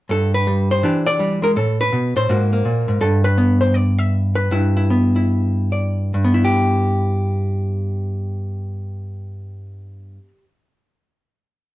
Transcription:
hollow-body jazz guitar
0.09 G2 A4
0.34 B4
0.47 G3
0.71 C5
0.83 E3 D4 G4
1.07 D5
1.19 G3
1.42 G#3 A#4
1.56 A2 A4
1.81 B4
1.93 B2
2.16 A2 C5
2.29 G#2 A#3 F#4
2.53 A#3
2.65 A#2
2.88 G#2
3.01 G2 A4
3.24 B4
3.38 B3
3.61 C5
3.74 D5
3.99 E5
4.35 B4
4.51 G2 E4
4.77 E4
4.90 B3
5.16 E4
5.72 D5
6.14 G2
6.24 B3
6.34 E4
6.45 G4

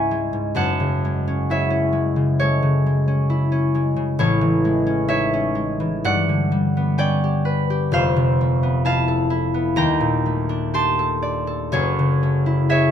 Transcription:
harp
Already playing: C#2 G#2 C#4 E4 G#4 C#5 D#5 E5 F#5 G#5
0.11 G#3
0.33 G#2
0.55 F#1 F#2 F#5 A5
0.80 C#3
1.05 G#3
1.28 C#4
1.50 E4 C#5 E5
1.70 C#4
1.93 G#3
2.16 C#3
2.40 G#3 A4 C#5
2.63 C#3
2.86 G#3
3.08 C#4
3.30 E4
3.52 C#4
3.75 G#3
3.96 C#3
4.19 A1 A2 A4 C#5
4.41 E3
4.65 G#3
4.87 C#4
5.08 D#4 C#5 E5
5.33 C#4
5.55 G#3
5.80 E3
6.04 G2 D5 F#5
6.29 D3
6.52 G3
6.77 B3
6.98 C#4 D5 G5
7.24 G4
7.45 B4
7.70 G4
7.92 F1 F2 C5 F5
8.16 C3
8.41 A3
8.63 B3
8.85 E4 F5 A5
9.08 A4
9.30 E4
9.54 B3
9.76 D#2 G5 A#5
10.01 A#2
10.26 A3
10.49 D4
10.74 G4 A5 C6
10.99 A4
11.22 D5
11.47 A4
11.72 F#1 F#2 A4 C#5
11.99 C#3
12.23 A3
12.46 E4
12.69 G#4 C#5 E5

